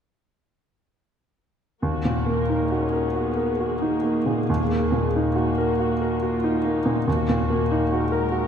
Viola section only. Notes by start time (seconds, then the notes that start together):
1.83 A#3 F#4
2.28 A#4
2.70 C#4 G#4
3.15 B3
3.60 A#3
4.49 A#3
4.91 G#3
5.36 A#3 F#4
6.22 F4
6.64 D#4
7.06 A#3 F#4
7.49 F#4
7.91 G#3 A#4